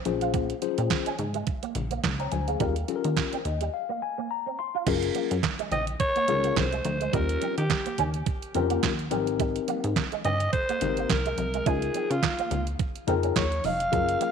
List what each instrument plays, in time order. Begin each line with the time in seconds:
0.05 analog synth bass A#1, tine electric piano C#4 F4 G#4 C5, muted clean electric guitar stroke, closed hi-hat, high conga
0.21 clean electric guitar F4, closed hi-hat
0.34 clean electric guitar A#3, kick, closed hi-hat, muted conga
0.50 closed hi-hat
0.62 tine electric piano C#4 F4 G#4 C5, muted clean electric guitar stroke, closed hi-hat, muted conga
0.78 analog synth bass A#2, clean electric guitar C4, closed hi-hat
0.90 kick, snare, clap, closed hi-hat, high conga
1.06 clean electric guitar C#4, closed hi-hat
1.19 analog synth bass G#2, muted clean electric guitar stroke, closed hi-hat, low conga
1.34 clean electric guitar G#3, closed hi-hat
1.47 kick, closed hi-hat, muted conga
1.63 clean electric guitar A#3, closed hi-hat
1.75 analog synth bass A#1, muted clean electric guitar stroke, closed hi-hat, muted conga, low conga
1.91 clean electric guitar A#3, closed hi-hat
2.04 analog synth bass C#2, kick, snare, clap, closed hi-hat, high conga
2.19 clean electric guitar C4, tine electric piano C#5 A#5, closed hi-hat
2.32 analog synth bass D2, tine electric piano C5 G#5, muted clean electric guitar stroke, closed hi-hat, high conga
2.48 clean electric guitar A#3, tine electric piano G#4 F5, closed hi-hat
2.60 analog synth bass D#2, clean electric guitar G3, tine electric piano C#4 F4 G4 A#4, kick, closed hi-hat, muted conga
2.76 closed hi-hat
2.88 tine electric piano C#4 F4 G4 A4, muted clean electric guitar stroke, closed hi-hat, muted conga
2.96 tine electric piano A#4
3.04 analog synth bass D#3, clean electric guitar A#3, closed hi-hat
3.17 kick, snare, clap, closed hi-hat, high conga
3.33 clean electric guitar C4, closed hi-hat
3.45 analog synth bass D#2, tine electric piano D#5, muted clean electric guitar stroke, closed hi-hat
3.61 clean electric guitar G3, closed hi-hat
3.74 tine electric piano F5
3.89 clean electric guitar A#3
4.02 tine electric piano G#5, muted clean electric guitar stroke
4.18 clean electric guitar A#3
4.31 tine electric piano A#5
4.46 clean electric guitar C4
4.59 tine electric piano C6, muted clean electric guitar stroke
4.75 clean electric guitar F4
4.87 analog synth bass F#1, clean electric guitar F#3, tine electric piano C#4 F4 G#4 A#4, kick, closed hi-hat, crash, muted conga
5.03 closed hi-hat
5.15 clean electric guitar A#3, closed hi-hat, muted conga
5.31 analog synth bass F#2, muted clean electric guitar stroke, closed hi-hat
5.43 muted clean electric guitar stroke, kick, snare, clap, closed hi-hat, high conga
5.59 clean electric guitar G#3, closed hi-hat
5.71 analog synth bass A#1, clean electric guitar C4, alto saxophone D#5, closed hi-hat, low conga
5.87 closed hi-hat
6.00 alto saxophone C#5, kick, closed hi-hat, muted conga
6.16 clean electric guitar A#3, closed hi-hat
6.28 analog synth bass C#2, tine electric piano C#4 F4 G#4 A#4, muted clean electric guitar stroke, closed hi-hat, muted conga, low conga
6.44 clean electric guitar A#3, closed hi-hat
6.56 analog synth bass C2, alto saxophone C5, kick, snare, clap, closed hi-hat, high conga
6.72 clean electric guitar G#3, closed hi-hat
6.85 analog synth bass D2, muted clean electric guitar stroke, closed hi-hat, high conga
7.01 clean electric guitar G#3, closed hi-hat
7.13 analog synth bass D#2, clean electric guitar G3, tine electric piano C#4 F4 G4 A#4, alto saxophone A#4, kick, closed hi-hat, muted conga
7.29 closed hi-hat
7.42 clean electric guitar C4, closed hi-hat, muted conga
7.58 analog synth bass D#3, alto saxophone G4, muted clean electric guitar stroke, closed hi-hat
7.70 muted clean electric guitar stroke, kick, snare, clap, closed hi-hat, high conga
7.86 clean electric guitar A#3, closed hi-hat
7.98 analog synth bass D#2, clean electric guitar C#4, closed hi-hat, low conga
8.14 closed hi-hat
8.26 muted clean electric guitar stroke, kick, closed hi-hat, muted conga
8.42 closed hi-hat
8.54 analog synth bass F2, clean electric guitar C4, tine electric piano C#4 F4 G4 A#4, closed hi-hat, muted conga, low conga
8.70 clean electric guitar A#3, closed hi-hat
8.83 analog synth bass D#2, kick, snare, clap, closed hi-hat, high conga
8.99 closed hi-hat
9.11 analog synth bass G#1, tine electric piano C4 D#4 G4 A#4, clean electric guitar C4, closed hi-hat, high conga
9.27 closed hi-hat
9.39 clean electric guitar G3, kick, closed hi-hat, muted conga
9.56 closed hi-hat
9.68 clean electric guitar A#3, closed hi-hat, muted conga
9.84 analog synth bass G#2, muted clean electric guitar stroke, closed hi-hat
9.96 muted clean electric guitar stroke, kick, snare, clap, closed hi-hat, high conga
10.12 clean electric guitar G#3, closed hi-hat
10.25 analog synth bass G2, clean electric guitar C4, alto saxophone D#5, closed hi-hat, low conga
10.40 closed hi-hat
10.53 alto saxophone C5, kick, closed hi-hat, muted conga
10.69 clean electric guitar A#3, closed hi-hat
10.81 analog synth bass G#1, tine electric piano C4 D#4 G4 A#4, muted clean electric guitar stroke, closed hi-hat, muted conga, low conga
10.97 clean electric guitar A#3, closed hi-hat
11.09 analog synth bass C2, alto saxophone A#4, kick, snare, clap, closed hi-hat, high conga
11.26 clean electric guitar G#3, closed hi-hat
11.38 analog synth bass C2, muted clean electric guitar stroke, closed hi-hat, high conga
11.54 clean electric guitar G#3, closed hi-hat
11.66 analog synth bass C#2, clean electric guitar G#3, tine electric piano D#4 F4 G#4 A#4, alto saxophone G#4, kick, closed hi-hat, muted conga
11.82 closed hi-hat
11.94 clean electric guitar C4, closed hi-hat, muted conga
12.10 analog synth bass C#3, alto saxophone F4, muted clean electric guitar stroke, closed hi-hat
12.23 muted clean electric guitar stroke, kick, snare, clap, closed hi-hat, high conga
12.39 clean electric guitar A#3, closed hi-hat
12.51 analog synth bass C#2, clean electric guitar A#3, closed hi-hat, low conga
12.67 closed hi-hat
12.79 muted clean electric guitar stroke, kick, closed hi-hat, muted conga
12.96 closed hi-hat
13.07 analog synth bass F2, clean electric guitar C4, tine electric piano D#4 F4 G#4 A#4, closed hi-hat, muted conga, low conga
13.23 clean electric guitar C#4, closed hi-hat
13.36 analog synth bass D#2, alto saxophone C#5, kick, snare, clap, closed hi-hat, high conga
13.52 closed hi-hat
13.64 analog synth bass F1, clean electric guitar D#4, alto saxophone F5, open hi-hat, high conga
13.80 closed hi-hat
13.92 analog synth bass F#1, clean electric guitar F#3, tine electric piano C#4 F4 G#4 A#4, kick, closed hi-hat, muted conga
14.09 closed hi-hat
14.21 clean electric guitar A#3, closed hi-hat, muted conga